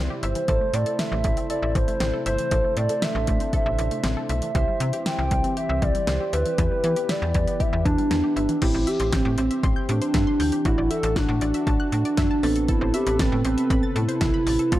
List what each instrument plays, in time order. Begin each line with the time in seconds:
Already playing: analog synth pad C3 G3 E4, synth keys E4 G4 C5
0.10 synth arpeggio sound G4
0.23 fm bass G1, soft synth lead C5, synth arpeggio sound E5, closed hi-hat
0.35 synth arpeggio sound E3, closed hi-hat
0.48 fm bass A1, analog synth pad C3 A3 E4, synth arpeggio sound E3, synth keys E4 A4 C5, kick, closed hi-hat
0.61 synth arpeggio sound A3
0.74 fm bass A2, synth arpeggio sound C4, soft synth lead D5, closed hi-hat
0.86 synth arpeggio sound A4, closed hi-hat
0.99 synth arpeggio sound E5, soft synth lead E5, snare, closed hi-hat
1.12 fm bass A1, synth arpeggio sound E3
1.24 fm bass A1, synth arpeggio sound A3, kick, closed hi-hat
1.37 synth arpeggio sound C4, closed hi-hat
1.50 synth arpeggio sound A4, soft synth lead D5, closed hi-hat
1.62 fm bass A1, synth arpeggio sound E5
1.75 fm bass A1, synth arpeggio sound E3, soft synth lead C5, kick, closed hi-hat
1.88 synth arpeggio sound A3, closed hi-hat
2.00 fm bass A1, synth arpeggio sound C4, snare, closed hi-hat
2.14 synth arpeggio sound A4
2.26 fm bass G1, soft synth lead C5, synth arpeggio sound E5, closed hi-hat
2.38 synth arpeggio sound E3, closed hi-hat
2.51 fm bass A1, synth arpeggio sound E3, analog synth pad D4, synth keys E4 A4 C5, kick, closed hi-hat
2.64 synth arpeggio sound A3
2.77 fm bass A2, synth arpeggio sound C4, soft synth lead D5, closed hi-hat
2.89 synth arpeggio sound A4, closed hi-hat
3.02 synth arpeggio sound E5, soft synth lead E5, snare, closed hi-hat
3.15 fm bass A1, synth arpeggio sound E3
3.27 fm bass A1, synth arpeggio sound A3, kick, closed hi-hat
3.40 synth arpeggio sound C4, closed hi-hat
3.53 synth arpeggio sound A4, soft synth lead E5, kick, closed hi-hat
3.66 fm bass A1, synth arpeggio sound E5
3.79 fm bass A1, synth arpeggio sound E3, closed hi-hat
3.91 synth arpeggio sound A3, closed hi-hat
4.04 fm bass A1, synth arpeggio sound C4, snare, closed hi-hat
4.17 synth arpeggio sound A4
4.29 fm bass B1, synth arpeggio sound E5, soft synth lead E5, closed hi-hat
4.42 synth arpeggio sound E3, closed hi-hat
4.55 fm bass C2, analog synth pad E3 C4 G4, synth arpeggio sound E3, synth keys E4 G4 C5, kick, closed hi-hat
4.68 synth arpeggio sound G3
4.80 fm bass C3, synth arpeggio sound C4, closed hi-hat
4.93 synth arpeggio sound G4, closed hi-hat
5.06 synth arpeggio sound E5, soft synth lead G5, snare, closed hi-hat
5.18 fm bass C2, synth arpeggio sound E3
5.31 fm bass C2, synth arpeggio sound G3, kick, closed hi-hat
5.44 synth arpeggio sound C4, closed hi-hat
5.57 synth arpeggio sound G4, soft synth lead E5, closed hi-hat
5.69 fm bass C2, synth arpeggio sound E5
5.82 fm bass C2, synth arpeggio sound E3, soft synth lead D5, kick, closed hi-hat
5.95 synth arpeggio sound G3, closed hi-hat
6.07 fm bass C2, synth arpeggio sound C4, synth keys E4 G4 C5, snare, closed hi-hat
6.20 synth arpeggio sound G4
6.33 fm bass D2, soft synth lead B4, synth arpeggio sound E5, closed hi-hat
6.46 synth arpeggio sound E3, closed hi-hat
6.58 fm bass E2, analog synth pad E3 B3, synth arpeggio sound E3, synth keys E4 G4 B4, kick, closed hi-hat
6.71 synth arpeggio sound G3
6.84 fm bass E3, synth arpeggio sound B3, closed hi-hat
6.96 synth arpeggio sound G4, closed hi-hat
7.09 soft synth lead D5, synth arpeggio sound E5, snare, closed hi-hat
7.22 fm bass E2, synth arpeggio sound E3
7.34 fm bass E2, synth arpeggio sound G3, kick, closed hi-hat
7.47 synth arpeggio sound B3, closed hi-hat
7.60 synth arpeggio sound G4, soft synth lead E5, kick, closed hi-hat
7.73 fm bass E2, synth arpeggio sound E5
7.85 fm bass E2, synth arpeggio sound E3, soft synth lead D4, kick, closed hi-hat
7.98 synth arpeggio sound G3, closed hi-hat
8.11 fm bass E2, synth arpeggio sound B3, snare, closed hi-hat
8.24 synth arpeggio sound G4
8.36 fm bass G1, soft synth lead D4, synth arpeggio sound E5, closed hi-hat
8.49 synth arpeggio sound E3, closed hi-hat
8.62 fm bass A1, analog synth pad E3 C4 G4, synth keys C4 E4 G4, soft synth lead E4, synth arpeggio sound G4, kick, closed hi-hat, crash
8.74 fm bass A1, synth arpeggio sound C5
8.87 soft synth lead G4, synth arpeggio sound E5, closed hi-hat
9.00 fm bass A1, synth arpeggio sound C6, closed hi-hat
9.12 fm bass A1, soft synth lead C4, synth arpeggio sound G6, kick, snare, closed hi-hat
9.25 fm bass A2, synth arpeggio sound G4
9.38 fm bass A1, soft synth lead C4, synth arpeggio sound C5, closed hi-hat
9.51 synth arpeggio sound E5, closed hi-hat
9.63 fm bass A1, soft synth lead C4, synth arpeggio sound C6, kick, closed hi-hat
9.76 synth arpeggio sound G6
9.89 fm bass A2, soft synth lead D4, synth arpeggio sound G4, closed hi-hat
10.02 synth arpeggio sound C5, closed hi-hat
10.14 fm bass G2, synth arpeggio sound E5, kick, snare, closed hi-hat
10.27 synth arpeggio sound C6
10.40 fm bass D2, synth arpeggio sound G6, open hi-hat
10.52 synth arpeggio sound G4, closed hi-hat
10.65 fm bass A1, analog synth pad D4 F#4, synth keys D4 E4 F#4, soft synth lead E4, synth arpeggio sound F#4, kick, closed hi-hat
10.78 fm bass A1, synth arpeggio sound D5
10.91 soft synth lead A4, synth arpeggio sound E5, closed hi-hat
11.03 fm bass A1, synth arpeggio sound A5, closed hi-hat
11.16 fm bass A1, soft synth lead D4, synth arpeggio sound F#6, kick, snare, closed hi-hat
11.29 fm bass A2, synth arpeggio sound F#4
11.41 fm bass A1, soft synth lead D4, synth arpeggio sound D5, closed hi-hat
11.54 synth arpeggio sound E5, closed hi-hat
11.67 fm bass A1, synth arpeggio sound A5, kick, closed hi-hat
11.80 synth arpeggio sound F#6
11.92 fm bass A2, soft synth lead D4, synth arpeggio sound F#4, closed hi-hat
12.05 synth arpeggio sound D5, closed hi-hat
12.17 fm bass F#2, synth arpeggio sound E5, kick, snare, closed hi-hat
12.31 synth arpeggio sound A5
12.43 fm bass A1, analog synth pad C3 A4 B4, synth keys B3 C4 A4, synth arpeggio sound A6, open hi-hat
12.56 synth arpeggio sound A4, closed hi-hat
12.68 soft synth lead E4, synth arpeggio sound A4, kick, closed hi-hat
12.81 fm bass A1, synth arpeggio sound C5
12.94 soft synth lead G4, synth arpeggio sound E5, closed hi-hat
13.07 fm bass A1, synth arpeggio sound B5, closed hi-hat
13.19 fm bass A1, soft synth lead C4, synth arpeggio sound A6, kick, snare, closed hi-hat
13.32 fm bass A2, synth arpeggio sound A4
13.45 fm bass A1, soft synth lead C4, synth arpeggio sound C5, closed hi-hat
13.58 synth arpeggio sound E5, closed hi-hat
13.70 fm bass A1, soft synth lead C4, synth arpeggio sound B5, kick, closed hi-hat
13.83 synth arpeggio sound A6
13.96 fm bass A2, soft synth lead E4, synth arpeggio sound A4, closed hi-hat
14.08 synth arpeggio sound C5, closed hi-hat
14.21 fm bass B1, synth arpeggio sound E5, kick, snare, closed hi-hat
14.34 synth arpeggio sound B5
14.46 fm bass A1, synth arpeggio sound A6, open hi-hat
14.59 synth arpeggio sound A4, closed hi-hat
14.72 fm bass A1, analog synth pad A3 F4, synth keys A3 C4 F4, soft synth lead F4, synth arpeggio sound A4, kick, closed hi-hat